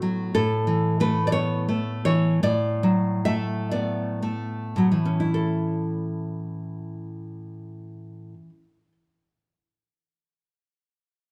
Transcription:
0.00 0.30 A2 soft
0.00 0.34 F#3 soft
0.00 0.35 A3 soft
0.00 0.34 B3 soft
0.00 0.30 F#4 medium
0.35 2.39 A2 medium
0.35 0.98 A4 medium
0.67 1.69 E3 soft
1.00 1.67 A3 soft
1.00 1.26 B4 medium
1.27 1.32 D5 medium
1.32 2.42 B3 soft
1.32 2.00 C#5 medium
1.69 2.42 A3 soft
2.05 2.42 E3 soft
2.05 2.41 C#5 medium
2.43 4.75 A2 medium
2.43 3.23 D5 medium
2.83 4.23 F#3 medium
3.25 4.21 A3 soft
3.25 3.70 E5 medium
3.71 5.34 B3 soft
3.71 4.20 D5 medium
4.22 5.35 A3 soft
4.76 8.34 A2 soft
4.76 4.91 F#3 soft
4.92 8.49 E3 soft
5.05 8.63 C#4 soft
5.20 8.78 E4 soft
5.34 8.92 A4 soft

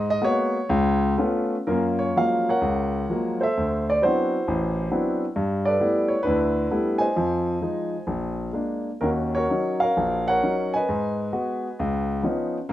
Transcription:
0.00 0.17 G#2 medium
0.10 0.24 D#5 loud
0.22 0.56 G#3 medium
0.22 0.56 A#3 medium
0.22 0.56 B3 medium
0.22 0.57 F#4 medium
0.22 1.00 C#5 loud
0.69 1.13 C#2 loud
1.18 1.54 A3 medium
1.18 1.54 B3 medium
1.18 1.55 C#4 medium
1.18 1.55 F4 medium
1.67 2.10 F#2 medium
1.67 2.10 A#3 medium
1.67 2.58 C#4 medium
1.67 2.58 F4 medium
1.67 2.01 A#4 medium
1.99 2.16 C#5 medium
2.16 2.50 F3 soft
2.16 2.50 F#3 soft
2.16 2.50 G#3 soft
2.16 2.50 A#3 medium
2.16 2.50 F5 medium
2.49 3.38 A#4 medium
2.49 3.38 C#5 medium
2.49 3.45 F#5 medium
2.61 3.03 C#2 medium
3.10 3.43 F3 medium
3.10 3.43 F#3 soft
3.10 3.44 G#3 soft
3.10 3.44 A#3 medium
3.41 4.30 A4 medium
3.41 4.02 C5 medium
3.41 3.86 E5 medium
3.57 3.97 D2 medium
3.90 4.02 D5 medium
4.02 4.36 F#3 medium
4.02 4.36 B3 soft
4.02 4.35 C4 soft
4.02 4.36 D4 soft
4.02 4.90 E4 medium
4.02 5.19 F#4 medium
4.02 5.19 C5 medium
4.48 4.87 A1 medium
4.91 5.24 F#3 soft
4.91 5.24 B3 soft
4.91 5.24 C4 soft
4.91 5.24 D4 soft
4.91 5.24 E4 medium
5.36 5.75 G2 medium
5.65 6.53 A4 medium
5.65 6.21 B4 medium
5.65 6.12 D5 medium
5.80 6.13 G3 soft
5.80 6.13 A3 soft
5.80 6.13 B3 soft
5.80 6.13 E4 medium
6.08 6.23 C#5 medium
6.23 6.66 D2 medium
6.23 7.12 D4 medium
6.23 6.70 E4 medium
6.23 7.03 B4 medium
6.71 7.04 G3 medium
6.71 7.04 A3 soft
6.71 7.04 B3 soft
6.71 7.04 E4 medium
6.98 8.04 C5 medium
6.98 8.04 D#5 medium
6.98 8.35 G#5 medium
7.16 7.56 F2 medium
7.16 7.56 F3 medium
7.62 7.95 F3 soft
7.62 7.95 G#3 soft
7.62 7.95 D#4 medium
8.07 8.49 A#1 medium
8.53 8.88 G#3 soft
8.53 8.89 A#3 soft
8.53 8.89 D4 soft
9.01 9.44 D#2 medium
9.01 9.44 D#3 medium
9.01 9.49 C#4 medium
9.01 9.35 F#4 medium
9.01 9.08 A#4 medium
9.35 10.26 F#4 medium
9.35 9.81 A#4 medium
9.35 9.81 C#5 medium
9.50 9.84 F#3 soft
9.50 9.85 C#4 soft
9.50 9.85 D#4 medium
9.80 10.27 A#4 medium
9.80 10.28 C#5 medium
9.80 10.30 F5 medium
9.97 10.38 A#1 medium
10.28 10.86 A#4 medium
10.28 10.86 C#5 medium
10.28 10.76 F#5 medium
10.43 10.77 F#3 medium
10.43 10.77 C#4 soft
10.43 10.77 D#4 medium
10.74 12.09 B4 medium
10.74 12.08 D#5 medium
10.74 12.07 G#5 medium
10.89 11.29 G#2 medium
11.33 11.67 G#3 medium
11.33 11.67 B3 soft
11.33 11.67 F#4 medium
11.79 12.20 C#2 medium
12.23 12.57 F3 medium
12.23 12.57 B3 medium
12.23 12.57 C#4 soft
12.23 12.57 D#4 medium
12.69 12.72 F#2 medium
12.69 12.72 A#3 medium

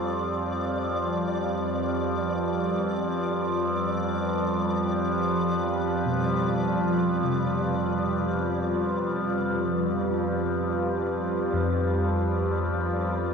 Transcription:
0.00 0.60 F2 soft
0.00 13.34 F2 medium
0.00 13.34 F3 medium
0.00 13.34 G3 medium
0.00 13.34 F4 medium
0.00 13.34 B4 medium
0.00 0.12 C5 medium
0.00 13.34 D5 medium
6.06 7.48 B2 soft
7.24 13.34 C3 soft
11.53 13.34 F2 soft

